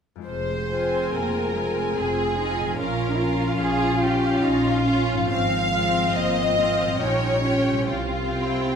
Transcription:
0.16 2.81 F2 soft
0.16 2.78 G#3 soft
0.20 2.68 F4 soft
0.20 2.79 C5 soft
0.26 1.03 F1 soft
0.26 2.73 C4 soft
0.26 2.73 G#4 soft
0.26 1.09 C5 medium
0.70 1.54 C4 soft
0.70 1.54 F4 soft
0.70 1.53 G#5 soft
1.13 1.87 F1 soft
1.13 1.53 A#3 soft
1.13 1.98 A#4 medium
1.55 1.96 G#3 soft
1.55 2.36 C4 soft
1.55 2.35 F4 soft
1.55 2.35 G#5 soft
1.96 2.68 F1 soft
1.96 2.37 C4 soft
1.96 2.78 G#4 medium
2.36 2.78 C4 soft
2.36 2.77 D#4 soft
2.36 2.76 F4 soft
2.36 2.77 G#5 soft
2.60 5.25 A#2 soft
2.65 5.16 F3 soft
2.69 5.20 F4 soft
2.73 3.18 C#4 soft
2.73 5.26 C#4 medium
2.73 6.83 F4 soft
2.73 5.31 C#5 soft
2.78 3.50 A#1 soft
2.78 3.17 C#4 soft
2.78 3.17 F4 soft
2.78 3.59 A#4 medium
2.78 3.18 F5 soft
3.17 3.98 C#4 soft
3.17 4.41 F4 medium
3.17 3.99 F4 soft
3.17 3.99 F5 soft
3.60 4.33 A#1 soft
3.60 4.00 G#4 medium
4.00 4.83 C#4 soft
4.00 4.83 F4 soft
4.00 4.43 G4 medium
4.00 4.85 F5 soft
4.42 5.20 A#1 medium
4.42 4.85 D#4 soft
4.42 5.31 F4 medium
4.85 5.29 C#4 soft
4.85 5.29 F4 soft
4.85 5.30 F5 soft
5.12 6.95 G#2 soft
5.17 7.85 F3 soft
5.21 6.91 F4 soft
5.26 6.83 C4 medium
5.26 7.02 C5 soft
5.31 6.05 G#1 medium
5.31 5.72 C4 soft
5.31 6.14 F5 medium
5.73 6.14 G#3 soft
5.73 6.56 C4 soft
5.73 6.56 F4 soft
5.73 6.55 F5 soft
6.15 6.90 G#1 medium
6.15 6.57 A#3 soft
6.15 7.01 D#5 medium
6.56 6.99 C4 soft
6.56 7.01 C4 soft
6.56 6.99 F4 soft
6.56 6.99 F5 soft
6.82 7.82 A#2 soft
6.87 7.72 G3 soft
6.92 7.87 F4 soft
6.96 7.42 C#4 soft
6.96 7.84 C#4 soft
6.96 7.89 C#5 soft
7.00 7.78 A#1 soft
7.00 7.44 D#4 soft
7.00 7.42 F4 soft
7.00 8.76 G4 soft
7.00 7.88 C#5 medium
7.00 7.43 G5 soft
7.43 7.87 C#4 soft
7.43 7.88 C#4 soft
7.43 7.87 F4 soft
7.43 7.87 G5 soft
7.70 8.76 C3 soft
7.74 8.76 G3 soft
7.78 8.76 E4 soft
7.83 8.76 C5 soft
7.88 8.67 C2 soft
7.88 8.76 C4 soft
7.88 8.75 F4 medium
8.33 8.76 C4 soft
8.33 8.76 E4 soft
8.33 8.76 G5 soft

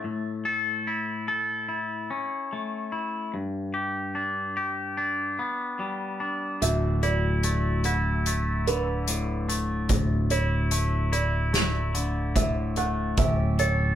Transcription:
0.00 2.10 A3 soft
0.04 2.10 A2 soft
0.45 1.28 A4 soft
0.87 1.67 E4 soft
1.28 3.37 A4 medium
1.69 2.91 E4 soft
2.10 3.34 C#4 soft
2.53 3.37 A3 soft
2.92 3.33 E4 soft
3.34 5.39 G2 soft
3.74 4.56 G4 soft
4.15 4.97 D4 soft
4.57 6.62 G4 medium
4.97 6.20 D4 soft
5.39 6.62 B3 soft
5.80 6.62 G3 soft
6.20 7.06 D4 soft
6.62 9.87 D1 medium
6.62 8.67 D2 soft
6.62 13.95 E3 soft
6.62 13.95 A3 soft
6.62 13.15 D4 soft
6.62 13.14 F#4 soft
6.62 7.03 E5 medium
6.62 closed hi-hat medium
7.03 7.85 E4 medium
7.03 7.85 D5 medium
7.03 closed hi-hat soft
7.43 8.26 A3 soft
7.43 closed hi-hat medium
7.84 9.93 E4 medium
7.84 8.67 F#5 soft
7.84 closed hi-hat soft
8.26 9.48 A3 soft
8.26 closed hi-hat medium
8.67 10.73 D3 soft
8.67 9.50 B4 medium
8.67 closed hi-hat soft
9.07 11.14 A2 medium
9.07 closed hi-hat medium
9.49 10.71 A3 soft
9.49 closed hi-hat soft
9.89 13.14 D1 medium
9.89 11.95 D2 medium
9.89 kick medium
9.89 closed hi-hat medium
10.30 11.11 E4 medium
10.30 11.13 C#5 medium
10.30 closed hi-hat soft
10.71 11.53 A3 medium
10.71 closed hi-hat medium
11.12 13.18 E4 medium
11.12 11.95 D5 soft
11.12 closed hi-hat soft
11.53 12.77 A3 soft
11.53 snare medium
11.53 closed hi-hat medium
11.94 13.18 D3 soft
11.94 closed hi-hat soft
12.36 13.17 A2 medium
12.36 12.77 E5 medium
12.36 kick medium
12.36 closed hi-hat medium
12.76 13.95 A3 medium
12.76 13.18 F#5 medium
12.76 closed hi-hat soft
13.17 13.95 D1 medium
13.17 13.95 A2 medium
13.17 13.95 C#4 soft
13.17 13.95 G4 medium
13.17 13.60 E5 medium
13.17 kick medium
13.17 closed hi-hat medium
13.59 13.95 A4 medium
13.59 13.95 C#5 medium
13.59 closed hi-hat soft

